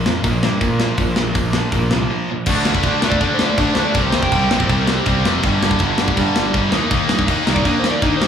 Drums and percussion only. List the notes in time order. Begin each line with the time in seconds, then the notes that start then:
0.06 snare
0.24 kick, open hi-hat
0.43 snare
0.61 kick, open hi-hat
0.80 snare
0.98 kick, open hi-hat
1.16 snare
1.35 kick, open hi-hat
1.53 snare
1.72 kick, open hi-hat
1.91 snare
2.46 kick, crash
2.65 snare
2.75 kick
2.83 kick, crash
3.02 snare
3.12 kick
3.20 kick, crash
3.39 snare
3.57 kick, crash
3.75 snare
3.94 kick, crash
4.12 snare
4.23 kick
4.32 kick, crash
4.51 snare
4.60 kick
4.70 kick, crash
4.87 snare
5.06 kick, crash
5.25 snare
5.43 kick, crash
5.63 snare
5.71 kick
5.79 kick, crash
5.98 snare
6.08 kick
6.17 kick, crash
6.36 snare
6.54 kick, crash
6.72 snare
6.91 kick, crash
7.09 snare
7.19 kick
7.28 kick, crash
7.47 snare
7.56 kick
7.65 kick, crash
7.84 snare
8.02 kick, crash
8.22 snare